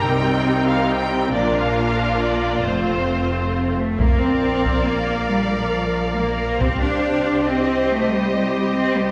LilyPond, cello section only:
\new Staff \with { instrumentName = "Cello section" } { \time 3/4 \key bes \major \tempo 4 = 138 c2. | bes,2. | f,2~ f,8 a8 | bes8 c'4. bes4 |
g8 f4. bes8 bes8 | c'8 d'4. c'4 | a8 g4. c'8 g8 | }